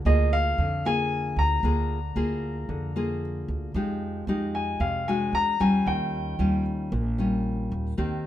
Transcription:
0.00 0.56 D3 soft
0.05 0.54 D2 medium
0.05 0.58 A#3 medium
0.05 0.58 F4 soft
0.05 0.58 G#4 medium
0.05 0.33 D#5 medium
0.33 0.87 F5 medium
0.58 1.33 F2 medium
0.58 1.62 D3 soft
0.85 1.60 A#3 medium
0.85 1.60 F4 soft
0.85 1.60 G#4 medium
0.85 1.40 G#5 medium
1.36 1.61 D2 medium
1.36 3.19 A#5 medium
1.63 2.12 D2 medium
1.63 2.67 D3 soft
1.63 1.98 A#3 soft
1.63 1.98 F4 soft
1.63 1.98 G#4 medium
2.16 2.65 D2 medium
2.16 2.91 A#3 medium
2.16 2.91 F4 soft
2.16 2.91 G#4 medium
2.69 3.44 F2 medium
2.69 3.72 D3 soft
2.96 3.71 A#3 medium
2.96 3.71 F4 soft
2.96 3.71 G#4 medium
3.48 3.73 D2 medium
3.74 4.24 F2 medium
3.74 4.78 F3 soft
3.74 4.24 G#3 soft
3.74 4.24 D#4 soft
3.74 4.24 G4 medium
4.27 4.77 F2 medium
4.27 5.03 G#3 medium
4.27 5.04 D#4 medium
4.27 5.03 G4 medium
4.55 4.82 G#5 medium
4.80 5.30 F2 medium
4.80 5.31 C3 soft
4.80 5.08 F5 medium
5.08 5.56 G#3 soft
5.08 5.57 D4 medium
5.08 5.57 F#4 medium
5.08 5.32 G#5 medium
5.33 5.58 E2 medium
5.33 5.61 A#5 medium
5.60 5.85 E2 medium
5.60 6.35 G3 medium
5.60 6.35 C#4 medium
5.60 6.35 F4 medium
5.60 5.88 G#5 medium
5.86 6.36 D#2 medium
5.86 6.89 D#3 soft
5.86 6.62 G5 medium
6.39 6.88 D#2 medium
6.39 6.92 G3 soft
6.39 6.92 C#4 medium
6.39 6.92 F4 medium
6.92 7.68 A#1 medium
6.92 7.95 A#2 soft
7.18 7.94 G3 soft
7.18 7.94 C#4 medium
7.18 7.95 F4 medium
7.72 7.96 D#2 medium
7.97 8.27 D#2 medium
7.97 8.27 D#3 soft
7.97 8.27 A#3 soft
7.97 8.27 C4 soft
7.97 8.27 G4 medium

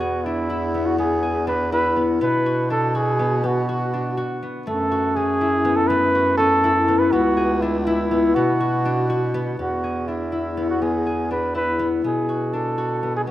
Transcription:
0.00 2.18 E2 medium
0.00 0.74 B3 medium
0.00 0.26 F#4 medium
0.00 1.70 F#4 medium
0.00 1.22 G#4 medium
0.24 1.47 D4 medium
0.24 0.88 E4 medium
0.50 1.72 E4 medium
0.74 0.98 B3 medium
0.86 0.99 F#4 medium
0.98 1.96 B3 medium
0.98 1.45 G#4 medium
1.23 3.50 G#4 medium
1.47 2.70 D4 medium
1.47 1.71 B4 medium
1.72 4.33 E4 medium
1.72 2.07 B4 medium
1.96 2.21 B3 medium
2.21 4.50 B2 medium
2.21 3.19 B3 medium
2.21 2.68 B4 medium
2.46 2.94 F#4 medium
2.70 3.93 D4 medium
2.70 2.98 A4 medium
2.95 3.68 F#4 medium
2.95 3.47 G#4 medium
3.19 3.43 B3 medium
3.44 4.42 B3 medium
3.44 4.43 F#4 medium
3.69 4.17 F#4 medium
3.93 5.22 D4 medium
4.17 4.91 F#4 medium
4.43 5.64 B3 medium
4.67 7.09 F#2 medium
4.67 5.89 A3 medium
4.67 5.17 A4 medium
4.92 6.14 F#4 medium
5.16 6.39 C#4 medium
5.16 5.78 G#4 medium
5.41 6.63 E4 medium
5.65 6.88 B3 medium
5.76 5.89 A4 medium
5.88 7.43 A3 medium
5.88 6.37 B4 medium
6.15 8.58 F#4 medium
6.37 7.68 C#4 medium
6.37 7.00 A4 medium
6.64 7.86 E4 medium
6.88 7.12 B3 medium
6.99 7.13 B4 medium
7.12 8.33 C#2 medium
7.12 8.11 B3 medium
7.12 7.62 F#4 medium
7.37 9.64 G#4 medium
7.61 8.85 D4 medium
7.61 7.79 E4 medium
7.80 7.87 F#4 medium
7.85 8.36 E4 medium
7.85 10.32 E4 medium
8.11 8.35 B3 medium
8.35 9.56 B2 medium
8.35 9.34 B3 medium
8.35 9.33 F#4 medium
8.60 9.09 F#4 medium
8.85 10.08 D4 medium
9.10 11.53 F#4 medium
9.34 9.59 B3 medium
9.59 12.00 E2 medium
9.59 10.57 B3 medium
9.59 10.09 F#4 medium
9.84 11.06 G#4 soft
10.07 11.30 D4 soft
10.07 10.69 E4 medium
10.32 11.54 E4 medium
10.57 10.81 B3 medium
10.70 10.84 F#4 medium
10.82 11.79 B3 medium
10.82 11.31 G#4 medium
11.07 13.31 G#4 medium
11.31 12.53 D4 medium
11.31 11.54 B4 medium
11.55 13.31 E4 medium
11.55 11.90 B4 medium
11.79 12.04 B3 medium
12.04 13.31 B2 medium
12.04 13.02 B3 medium
12.04 12.55 G#4 medium
12.29 12.77 F#4 medium
12.53 13.31 D4 medium
12.53 13.15 A4 medium
12.78 13.31 F#4 medium
13.03 13.27 B3 medium
13.17 13.22 G#4 medium
13.27 13.31 B3 medium

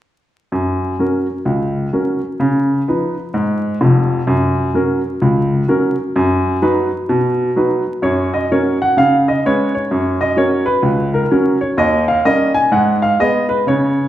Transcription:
0.52 0.92 F#2 medium
0.99 1.25 F#3 soft
0.99 1.25 C#4 soft
0.99 1.26 A#4 soft
1.45 1.86 C#2 medium
1.93 2.19 F#3 soft
1.93 2.19 C#4 soft
1.93 2.19 A#4 soft
2.40 2.80 C#3 medium
2.88 3.14 F3 soft
2.88 3.14 D#4 soft
2.88 3.14 B4 soft
3.34 3.74 G#2 medium
3.81 4.19 F1 medium
3.81 4.19 F2 medium
4.27 4.67 F#2 medium
4.74 5.00 F#3 soft
4.74 5.01 C#4 soft
4.74 5.01 A#4 soft
5.22 5.62 C#2 medium
5.68 5.94 F#3 soft
5.68 5.95 C#4 soft
5.68 5.95 A#4 soft
6.16 6.56 F#2 medium
6.62 6.88 F#3 soft
6.62 6.88 D#4 medium
6.62 6.88 B4 medium
7.09 7.49 B2 medium
7.56 7.82 F#3 soft
7.56 7.82 D#4 soft
7.56 7.83 B4 soft
8.02 8.43 F#2 medium
8.02 8.28 C#5 medium
8.34 8.48 D#5 medium
8.51 8.77 F#3 soft
8.51 8.77 C#4 soft
8.51 8.77 A#4 soft
8.51 8.76 C#5 medium
8.82 8.95 F#5 medium
8.97 9.37 C#3 medium
8.97 9.23 F5 medium
9.28 9.42 D#5 medium
9.45 9.71 G#3 soft
9.45 9.71 C#4 soft
9.45 9.71 B4 soft
9.45 9.71 C#5 medium
9.75 10.14 C#5 medium
9.91 10.31 F#2 medium
10.21 10.35 D#5 medium
10.36 10.62 F#3 soft
10.36 10.63 C#4 soft
10.36 10.63 A#4 soft
10.36 10.63 C#5 medium
10.66 11.06 B4 medium
10.83 11.23 C#2 medium
11.14 11.30 A#4 medium
11.31 11.57 F#3 soft
11.31 11.57 C#4 medium
11.31 11.57 A#4 soft
11.61 11.76 C#5 medium
11.77 12.18 D#2 medium
11.77 12.03 D#5 medium
12.08 12.22 F5 medium
12.25 12.51 G3 soft
12.25 12.51 C#4 soft
12.25 12.51 A#4 soft
12.25 12.51 D#5 medium
12.54 12.69 G#5 medium
12.72 13.12 G#2 medium
12.72 12.97 F#5 medium
13.02 13.17 F5 medium
13.20 13.45 G#3 soft
13.20 13.45 B3 soft
13.20 13.45 G#4 soft
13.20 13.45 D#5 medium
13.49 13.63 B4 medium
13.67 14.06 C#3 medium
13.67 14.08 C#5 medium

